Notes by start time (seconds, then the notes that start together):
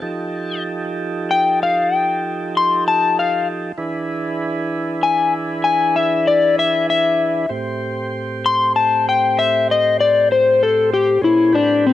Already playing: A5
0.02 F3 D#4 G4 A4
1.31 G5
1.63 F5
1.94 G5
2.57 C6
2.88 A5
3.19 F5
3.78 E3 D4 E4 G#4 B4
5.03 G#5
5.64 G#5
5.96 E5
6.27 D5
6.59 E5
6.90 E5
7.49 A2 C4 G4 C5
8.46 C6
8.76 A5
9.09 G5
9.39 E5
9.71 D#5
10.00 D5
10.32 C5
10.63 A4
10.93 G4
11.21 A#2 C#4 E4 G#4 C5
11.53 A2 C4 D4 G4 B4
11.87 C4